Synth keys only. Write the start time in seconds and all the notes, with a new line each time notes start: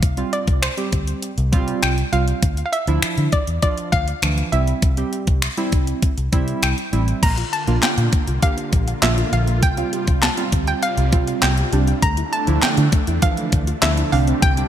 0.17 G3 C4 F4
0.77 G3 C4 G4
1.52 G3 C4 F4
2.12 G3 C4 F4
2.87 F3 D4 E4
3.62 F3 D4 F4
4.22 E3 F3 D4
4.52 G3 C4 E4
4.97 G3 C4 G4
5.57 G3 C4 E4
6.32 G3 C4 E4
6.92 G3 C4 E4
7.67 A#3 D4 F4
8.42 A#3 D4 G4
9.02 A#3 D4 F4
9.77 G3 C4 F4
10.37 G3 C4 F4
11.12 G3 C4 F4
11.72 G3 C4 D4
12.47 F3 D4 E4
13.22 E3 F3 D4
13.82 F3 D4 E4
14.12 G3 C4 D4
14.58 G3 C4 D4